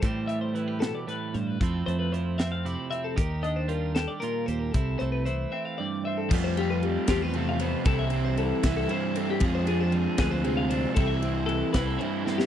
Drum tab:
CC |------------|------------|------------|------------|
RD |------------|------------|------------|------------|
HH |x-x-x-x-x-x-|x-x-x-x-x-x-|x-x-x-x-x-x-|x-x-x-------|
SD |------o-----|------o-----|------o-----|------------|
BD |o-----------|o-----------|o-----------|o-----------|

CC |x-----------|------------|------------|------------|
RD |--x-x-x-x-x-|x-x-x-x-x-x-|x-x-x-x-x-x-|x-x-x-x-x---|
HH |------------|------------|------------|------------|
SD |------o-----|------o-----|------o-----|------o---oo|
BD |o-----o-----|o-----o-----|o-----o-----|o-----o-----|